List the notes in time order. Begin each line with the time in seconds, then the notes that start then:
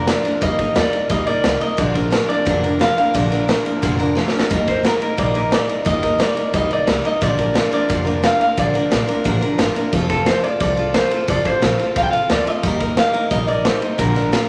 0.07 F3 A#3 D4 A#4 D5, snare, ride
0.24 F3 A#3 D4 A#4, muted upright bass stroke, ride
0.41 D#2 D#3 G3 A#3 D#4 A#4 D#5, kick, ride
0.58 A#3 D#4 A#4, kick, ride
0.75 D#2 G3 A#3 D#4 A#4 D5, snare, ride
0.93 A#3 D#4 A#4, muted upright bass stroke, ride
1.09 D2 D#3 G3 A#3 D#4 A#4 D#5, kick, ride
1.27 D#4 A#4 D5, muted upright bass stroke, ride
1.31 A#3
1.44 C2 G3 A#3 D#4 A#4, snare, ride
1.61 A#3 D#4 A#4 D#5, muted upright bass stroke, ride
1.77 A#1 A#2 D3 F3 A#3 D4 A#4 D5, kick, ride
1.94 F3 A#3 D4 A#4, kick, ride
2.11 F3 A#3 D4 A#4, snare, ride
2.28 F3 A#3 D4 A#4 D5, muted upright bass stroke, ride
2.45 F1 A#2 D3 F3 A#3 D4 A#4, kick, ride
2.63 F3 A#3 D4 A#4, ride
2.79 F3 A#3 D4 A#4 F5, snare, ride
2.97 F3 A#3 D4 A#4 F5, muted upright bass stroke, ride
3.14 A#1 A#2 D3 F3 A#3 D4 A#4 D5, kick, ride
3.30 F3 A#3 D4 A#4, snare, ride
3.48 F3 A#3 D4 A#4, snare, ride
3.65 F3 A#3 D4 A#4, muted upright bass stroke, ride
3.82 F1 A#2 D3 F3 A#3 D4 A#4, kick, ride
3.99 F3 A#3 D4 A#4, ride
4.15 F3 A#3 D4 A#4, snare
4.28 snare
4.32 F3 A#3 D4 A#4, muted upright bass stroke
4.40 snare
4.50 D#2 D#3 G3 A#3 D#4 A#4, kick, ride
4.67 A#3 D#4 A#4 C5, kick, snare, ride
4.83 G3 A#3 D#4 A#4, snare, ride
5.00 A#3 D#4 A#4, muted upright bass stroke, ride
5.17 A#1 D#3 G3 A#3 D#4 A#4 D5, kick, ride
5.34 A#3 D#4 A#4, ride
5.51 G3 A#3 D#4 A#4 D5, snare, ride
5.68 A#3 D#4 A#4, muted upright bass stroke, ride
5.85 D#2 D#3 G3 A#3 D#4 A#4 D#5, kick, ride
6.02 A#3 D#4 A#4, kick, snare, ride
6.18 G3 A#3 D#4 A#4 D5, snare, ride
6.35 A#3 D#4 A#4, muted upright bass stroke, ride
6.54 D2 D#3 G3 A#3 D#4 A#4 D#5, kick, ride
6.70 A#3 D#4 A#4 D5, muted upright bass stroke, ride
6.87 C2 G3 A#3 D#4 A#4, snare, ride
7.04 A#3 D#4 A#4 D#5, muted upright bass stroke, ride
7.21 A#1 A#2 D3 F3 A#3 D4 A#4 D5, kick, ride
7.38 F3 A#3 D4 A#4, kick, ride
7.54 F3 A#3 D4 A#4, snare, ride
7.71 F3 A#3 D4 A#4 D5, muted upright bass stroke, ride
7.89 F1 A#2 D3 F3 A#3 D4 A#4, kick, ride
8.05 F3 A#3 D4 A#4, ride
8.22 F3 A#3 D4 A#4 F5, snare, ride
8.38 F3 A#3 D4 A#4 F5, muted upright bass stroke, ride
8.57 A#1 A#2 D3 F3 A#3 D4 A#4 D5, kick, ride
8.74 F3 A#3 D4 A#4, muted upright bass stroke, ride
8.91 A#1 F3 A#3 D4 A#4, snare, ride
9.07 F3 A#3 D4 A#4, muted upright bass stroke, ride
9.24 A1 A#2 D3 F3 A#3 D4 A#4, kick, ride
9.41 F3 A#3 D4 A#4, muted upright bass stroke, ride
9.58 G1 F3 A#3 D4 A#4, snare, ride
9.75 F3 A#3 D4 A#4, muted upright bass stroke, ride
9.93 F1 F3 C4 F4 A4, kick, ride
10.09 C4 F4 A4, kick, snare, ride
10.26 F3 C4 F4 A4 C5, snare, ride
10.44 C4 F4 A4 D5, muted upright bass stroke, ride
10.60 C2 F3 C4 F4 A4 D5, kick, ride
10.77 C4 F4 A4, ride
10.94 F3 C4 F4 A4 C5, snare, ride
11.10 C4 F4 A4, muted upright bass stroke, ride
11.28 F1 F3 C4 F4 A4 D5, kick, ride
11.44 C4 F4 A4 C5, kick, ride
11.62 A#1 F3 C4 F4 A4, snare, ride
11.78 C4 F4 A4, muted upright bass stroke, ride
11.96 C2 F3 C4 F4 A4 F5, kick, ride
12.03 G5
12.11 F4 A4 F5, muted upright bass stroke, ride
12.16 C4
12.30 D2 F3 C4 F4 A4 D5, snare, ride
12.46 C4 F4 A4 D#5, muted upright bass stroke, ride
12.63 D#2 D#3 G3 A#3 D#4 A#4, kick, ride
12.80 A#3 D#4 A#4, kick, ride
12.97 G3 A#3 D#4 A#4 F5, snare, ride
13.13 A#3 D#4 A#4, muted upright bass stroke, ride
13.30 A#1 D#3 G3 A#3 D#4 A#4 D#5, kick, ride
13.47 A#3 D#4 A#4 D5, ride
13.65 G3 A#3 D#4 A#4 C5, snare, ride
13.81 A#3 D#4 A#4, muted upright bass stroke, ride
13.98 A#1 A#2 D3 F3 A#3 D4 A#4, kick, ride
14.15 F3 A#3 D4 A#4, snare, ride
14.32 F3 A#3 D4 A#4, snare, ride